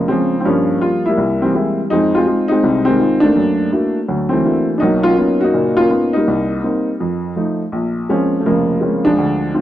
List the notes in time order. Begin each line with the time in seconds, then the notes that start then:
Already playing: C#3
0.08 F3 G#3 A#3 C4 C#4
0.40 C4
0.45 G2 F3 G3 A#3 C#4
0.81 G3 A#3 F4
1.06 G3 A#3 E4
1.18 C2
1.42 E3 G3 C4
1.55 G#3 A#3 C4 E4
1.90 F2 G#3 C4 D#4
2.15 G#3 C4 F4
2.27 G#3 D#4 F4
2.48 G#3 C4 D#4
2.63 C2 C3
2.85 D#3 G#3 C4
2.99 G#3 D#4 F4
3.20 A3 A#3 D4
3.36 F#2
3.71 A#3 D4 E4 F#4
4.08 D2 F#3
4.29 E3 A3 C4
4.45 A#3 D4 E4 F#4
4.78 B1 D4 D#4
4.82 F#3 A#3
5.03 A#3 C#4 F4
5.18 A#3 B3 C#4 D#4 F4
5.41 A#3 D#4 F#4
5.54 F#1 A#2
5.77 A#3 C#4 F4
5.90 A#3 B3 C#4 D#4 F4
6.13 G3 A#3 D#4
6.28 C2
6.64 A#3 C4 D#4
7.00 F2
7.36 F3 A3 D#4
7.72 A#1
8.09 F3 G#3 A#3 C4 C#4
8.40 A3
8.46 F1 C#3 F3 A#3
8.81 G#3 A#3 C4 C#4
9.05 F3 G#3 D4
9.18 D2
9.54 C4 D4 F4